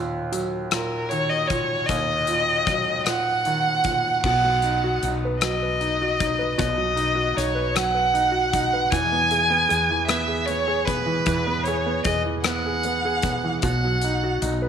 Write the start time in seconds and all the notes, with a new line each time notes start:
Already playing: D#2 A#2
0.32 F#3, closed hi-hat
0.71 A#2 A#4, cross-stick, closed hi-hat
1.09 D#3 C#5, closed hi-hat
1.29 D#5
1.48 A#2 C#5, kick, closed hi-hat
1.86 D#2 D#5, kick, closed hi-hat
2.27 A#2, closed hi-hat
2.67 F#3, kick, cross-stick, closed hi-hat
3.06 A#2 F#5, cross-stick, closed hi-hat
3.45 D#3, closed hi-hat
3.84 A#2, kick, closed hi-hat
4.24 B1 B2 F#5, kick, crash
4.44 F#3
4.62 D#4, closed hi-hat
4.84 F#4
5.03 B1 D#4, closed hi-hat
5.25 B4
5.41 F#3 D#5, cross-stick, closed hi-hat
5.62 B4
5.81 D#4, closed hi-hat
6.02 F#4
6.20 D#4, kick, closed hi-hat
6.39 B4
6.58 B1 B2 D#5, kick, closed hi-hat
6.78 F#3
6.96 D#4, closed hi-hat
7.15 F#4
7.35 B1 D#4 C#5, closed hi-hat
7.39 cross-stick
7.55 B4
7.75 F#3 F#5, cross-stick, closed hi-hat
7.95 B4
8.14 D#4, closed hi-hat
8.32 F#4
8.53 D#4, kick, closed hi-hat
8.73 B4
8.90 E2 E3 G#5, kick, closed hi-hat
9.12 B3
9.31 G#4, closed hi-hat
9.50 B3
9.69 E2 G#4, closed hi-hat
9.90 E3
10.08 B3 E5, cross-stick, closed hi-hat
10.28 G#4
10.46 B3 C#5, closed hi-hat
10.68 G#4
10.85 B3 B4, kick, closed hi-hat
11.06 E3
11.26 E2 E3, kick, closed hi-hat
11.47 B3
11.63 C#5, closed hi-hat
11.68 G#4
11.86 B3
12.04 E2 G#4 D#5, kick, closed hi-hat
12.25 E3
12.44 B3 F#5, cross-stick, closed hi-hat
12.66 G#4
12.83 B3, closed hi-hat
13.05 G#4
13.22 B3, kick, closed hi-hat
13.44 E3
13.62 B1 B2 F#5, kick, closed hi-hat
13.84 F#3
14.01 D#4, closed hi-hat
14.24 F#4
14.42 B1 D#4, closed hi-hat
14.62 B4